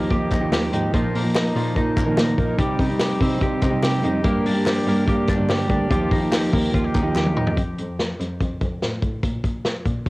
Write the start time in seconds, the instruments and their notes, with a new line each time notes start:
Already playing: clean electric guitar F3 A#3 D#4 G4
0.10 cello D#2, clean electric guitar F3 A#3 D#4 G4, kick, hi-hat pedal, open hi-hat
0.31 cello D#2, clean electric guitar D#4, kick, clap, hi-hat pedal, open hi-hat
0.41 clean electric guitar D#3 F3 A#3 D#4 G4
0.52 cello D#2, clean electric guitar G4, snare, clap, hi-hat pedal, open hi-hat
0.71 cello G#2, clean electric guitar F3 A#3 D#4 G4, hi-hat pedal, open hi-hat
0.92 cello A#2, clean electric guitar F3 A#3 D#4 A#4, kick, hi-hat pedal, open hi-hat
1.15 cello A#2, clean electric guitar A#3, hi-hat pedal, open hi-hat
1.22 clean electric guitar F3 A#3 D#4 A#4
1.35 clean electric guitar D#4, snare, clap, hi-hat pedal, open hi-hat
1.55 cello A#2, clean electric guitar F3 A#3 D#4 A#4, hi-hat pedal, open hi-hat
1.75 cello A#2, clean electric guitar F3 A#3 D#4 A#4, kick, hi-hat pedal, open hi-hat
1.96 cello A#2, clean electric guitar A#3, kick, clap, hi-hat pedal, open hi-hat
2.06 clean electric guitar A#2 D#3 F3 A#3 D#4 A#4
2.17 cello A#2, clean electric guitar D#4, snare, clap, hi-hat pedal, open hi-hat
2.36 cello A#2, clean electric guitar F3 A#3 D#4 A#4, kick, hi-hat pedal, open hi-hat
2.57 cello C3, clean electric guitar G3 C4 D#4 G4, kick, hi-hat pedal, open hi-hat
2.79 cello C3, clean electric guitar D#4, kick, hi-hat pedal, open hi-hat
2.89 clean electric guitar C4 D#4 G4
2.99 clean electric guitar G4, snare, clap, hi-hat pedal, open hi-hat
3.20 cello C3, clean electric guitar G3 C4 D#4 G4, kick, hi-hat pedal, open hi-hat
3.39 cello C3, clean electric guitar G3 C4 D#4 G4, kick, hi-hat pedal, open hi-hat
3.61 cello C3, clean electric guitar D#4, kick, clap, hi-hat pedal, open hi-hat
3.71 clean electric guitar C3 G3 C4 D#4 G4
3.83 cello C3, clean electric guitar G4, snare, clap, hi-hat pedal, open hi-hat
4.02 cello F2, clean electric guitar G3 C4 D#4 G4, hi-hat pedal, open hi-hat
4.22 cello G2, clean electric guitar G3 A#3 D4 G4, kick, hi-hat pedal, open hi-hat
4.45 cello G2, clean electric guitar D4, hi-hat pedal, open hi-hat
4.53 clean electric guitar G3 A#3 D4 G4
4.66 clean electric guitar G4, snare, clap, hi-hat pedal, open hi-hat
4.86 cello G2, clean electric guitar G3 A#3 D4 G4, hi-hat pedal, open hi-hat
5.05 cello G2, clean electric guitar G3 A#3 D4 G4, kick, hi-hat pedal, open hi-hat
5.27 cello G2, clean electric guitar D4, kick, clap, hi-hat pedal, open hi-hat
5.36 clean electric guitar G2 D3 G3 A#3 D4 G4
5.49 cello G2, clean electric guitar G4, snare, clap, hi-hat pedal, open hi-hat
5.67 cello D2, clean electric guitar G3 A#3 D4 G4, kick, hi-hat pedal, open hi-hat
5.89 cello D#2, clean electric guitar F3 A#3 D#4 G4, kick, hi-hat pedal, open hi-hat
6.11 cello D#2, clean electric guitar D#4, kick, hi-hat pedal, open hi-hat
6.20 clean electric guitar A#3 D#4 G4
6.32 clean electric guitar G4, snare, clap, hi-hat pedal, open hi-hat
6.51 cello D#2, clean electric guitar F3 A#3 D#4 G4, kick, hi-hat pedal, open hi-hat
6.71 cello D#2, clean electric guitar F3 A#3 D#4 F4 G4, kick, hi-hat pedal, open hi-hat
6.84 clean electric guitar G4
6.94 cello D#2, clean electric guitar D#4, kick, clap, hi-hat pedal, open hi-hat
7.03 clean electric guitar D#3 F3 A#3 D#4 G4
7.16 cello D#2, clean electric guitar G4, snare, clap
7.26 high tom
7.34 cello D#2, clean electric guitar F3 A#3 D#4 G4, mid tom
7.47 floor tom
7.57 cello F2, kick, closed hi-hat
7.78 cello F2, closed hi-hat
7.99 snare, closed hi-hat
8.20 cello F2, closed hi-hat
8.40 cello F2, kick, closed hi-hat
8.61 cello F2, kick, closed hi-hat
8.82 cello A2, snare, closed hi-hat
9.02 cello A2, kick, closed hi-hat
9.23 cello A#2, kick, closed hi-hat
9.44 cello A#2, kick, closed hi-hat
9.65 snare, closed hi-hat
9.86 cello A#2, kick, closed hi-hat